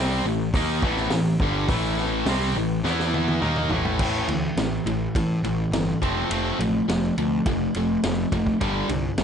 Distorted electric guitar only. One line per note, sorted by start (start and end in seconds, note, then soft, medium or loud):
0.00 0.24 C3 medium
0.00 0.25 G3 loud
0.00 0.25 C4 loud
0.27 0.49 A2 medium
0.27 0.49 E3 medium
0.55 0.82 D#3 medium
0.55 0.83 A#3 loud
0.55 0.83 D#4 loud
0.83 1.11 A2 medium
0.83 1.11 E3 medium
0.83 1.11 A3 loud
1.13 1.35 A2 medium
1.13 1.36 E3 medium
1.41 1.69 G2 medium
1.41 1.68 D3 medium
1.41 1.69 G3 loud
1.69 2.26 A2 loud
1.69 2.26 E3 loud
1.69 2.27 A3 loud
2.27 2.55 C3 loud
2.27 2.55 G3 medium
2.27 2.56 C4 loud
2.58 2.80 A2 medium
2.58 2.80 E3 medium
2.84 3.41 E3 medium
2.84 3.41 B3 medium
2.84 3.41 E4 medium
3.41 3.69 D#3 medium
3.41 3.70 A#3 medium
3.41 3.70 D#4 medium
3.70 3.99 A2 loud
3.70 3.99 E3 medium
3.70 4.00 A3 medium
4.00 4.27 A2 medium
4.00 4.27 E3 medium
4.00 4.28 A3 loud
4.30 4.55 A2 medium
4.30 4.56 E3 medium
4.58 4.84 A2 medium
4.58 4.84 E3 medium
4.86 5.12 A2 medium
4.86 5.12 E3 medium
5.16 5.41 A2 medium
5.16 5.42 E3 medium
5.45 5.70 A2 medium
5.45 5.70 E3 medium
5.74 5.99 A2 medium
5.74 5.99 E3 medium
6.02 6.29 F3 medium
6.02 6.29 A3 medium
6.02 6.29 C4 medium
6.31 6.58 F3 medium
6.31 6.58 A3 medium
6.31 6.58 C4 loud
6.59 6.85 F3 medium
6.59 6.85 A3 medium
6.88 7.14 F3 medium
6.88 7.14 A3 medium
7.18 7.43 F3 medium
7.18 7.44 A3 medium
7.47 7.72 F3 medium
7.47 7.73 A3 medium
7.76 8.01 F3 medium
7.76 8.01 A3 medium
8.04 8.29 F3 medium
8.04 8.30 A3 medium
8.33 8.58 F3 medium
8.33 8.58 A3 medium
8.61 8.88 G2 medium
8.61 8.88 D3 loud
8.61 8.88 G3 loud
8.89 9.15 G2 medium
8.89 9.15 D3 medium
9.19 9.24 G2 medium
9.19 9.24 D3 medium